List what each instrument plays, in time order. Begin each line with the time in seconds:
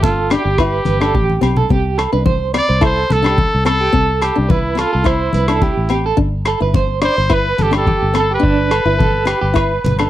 Already playing: fingered electric bass G1
0.02 trumpet F4, clean electric guitar A4, kick, high conga
0.30 steel-string acoustic guitar D4, clean electric guitar G4, trumpet G4, cross-stick, closed hi-hat, low agogo
0.45 fingered electric bass G1, clean electric guitar G4
0.58 steel-string acoustic guitar E4, trumpet G4, clean electric guitar B4, kick, cross-stick, muted conga, low agogo
0.85 fingered electric bass G1, clean electric guitar B4, closed hi-hat, muted conga, high conga
1.01 steel-string acoustic guitar D4, clean electric guitar A4, cross-stick, low agogo
1.15 fingered electric bass A1, clean electric guitar G4, kick, high conga
1.30 high conga
1.41 fingered electric bass B1, steel-string acoustic guitar C4, clean electric guitar G4, closed hi-hat, low conga, low agogo
1.56 clean electric guitar A4, low conga
1.69 fingered electric bass C2, steel-string acoustic guitar C4, clean electric guitar G4, kick, muted conga
1.98 clean electric guitar A4, cross-stick, closed hi-hat, low agogo
2.12 fingered electric bass C2, steel-string acoustic guitar D4, clean electric guitar B4
2.26 clean electric guitar C5, kick, high conga
2.54 steel-string acoustic guitar C4, clean electric guitar D5, trumpet D5, cross-stick, closed hi-hat, low agogo
2.69 fingered electric bass C2, clean electric guitar C5
2.81 steel-string acoustic guitar E4, clean electric guitar A4, kick, cross-stick, muted conga, low agogo
2.85 trumpet C5
3.10 fingered electric bass C2, clean electric guitar A4, trumpet A4, closed hi-hat, muted conga, high conga
3.22 steel-string acoustic guitar D4, clean electric guitar G4, cross-stick, low agogo
3.38 kick, high conga
3.54 fingered electric bass C2
3.65 steel-string acoustic guitar C4, clean electric guitar A4, trumpet A4, cross-stick, closed hi-hat, muted conga, low agogo
3.80 clean electric guitar G4
3.92 fingered electric bass C2, steel-string acoustic guitar C4, clean electric guitar A4, kick, muted conga
4.22 trumpet G4, clean electric guitar A4, cross-stick, closed hi-hat, low agogo
4.36 fingered electric bass C2, steel-string acoustic guitar D4
4.49 trumpet E4, clean electric guitar B4, kick, high conga
4.75 steel-string acoustic guitar C4, clean electric guitar A4, cross-stick, closed hi-hat, low agogo
4.80 trumpet F4
4.93 fingered electric bass C2, clean electric guitar A4
5.04 steel-string acoustic guitar E4, trumpet E4, clean electric guitar C5, kick, cross-stick, muted conga, low agogo
5.33 fingered electric bass C2, clean electric guitar B4, closed hi-hat, high conga
5.48 steel-string acoustic guitar D4, clean electric guitar A4, cross-stick, low agogo
5.62 clean electric guitar G4, kick, high conga
5.77 fingered electric bass A1
5.89 steel-string acoustic guitar C4, clean electric guitar G4, closed hi-hat, muted conga, low agogo
6.06 clean electric guitar A4
6.17 fingered electric bass G1, steel-string acoustic guitar D4, muted clean electric guitar stroke, kick, muted conga
6.45 clean electric guitar A4, cross-stick, closed hi-hat, low agogo
6.60 fingered electric bass G1, steel-string acoustic guitar E4, clean electric guitar B4
6.74 clean electric guitar C5, kick, high conga
7.01 steel-string acoustic guitar D4, trumpet C5, clean electric guitar D5, cross-stick, closed hi-hat, low agogo
7.18 fingered electric bass G1, clean electric guitar C5
7.29 steel-string acoustic guitar E4, clean electric guitar B4, kick, cross-stick, muted conga, low agogo
7.34 trumpet B4
7.58 fingered electric bass G1, clean electric guitar A4, closed hi-hat, muted conga, high conga
7.62 trumpet G4
7.71 steel-string acoustic guitar D4, clean electric guitar G4, cross-stick, low agogo
7.77 trumpet A4
7.87 clean electric guitar G4, kick, high conga
8.02 fingered electric bass G1
8.14 steel-string acoustic guitar C4, clean electric guitar A4, cross-stick, closed hi-hat, muted conga, low agogo
8.19 trumpet A4
8.31 clean electric guitar G4, trumpet B4
8.39 fingered electric bass G1, steel-string acoustic guitar D4, clean electric guitar D4, kick
8.45 muted conga
8.71 clean electric guitar A4, cross-stick, closed hi-hat, low agogo
8.85 fingered electric bass G1, steel-string acoustic guitar E4, clean electric guitar B4
8.98 clean electric guitar A4, kick, high conga, low conga
9.25 clean electric guitar G4, muted steel-string acoustic guitar stroke, cross-stick, closed hi-hat, low agogo
9.41 fingered electric bass G1, clean electric guitar G4
9.54 steel-string acoustic guitar E4, clean electric guitar B4, kick, cross-stick, muted conga, low agogo
9.84 fingered electric bass G1, clean electric guitar B4, closed hi-hat, muted conga, high conga, low conga
9.99 steel-string acoustic guitar D4, clean electric guitar A4, cross-stick, low agogo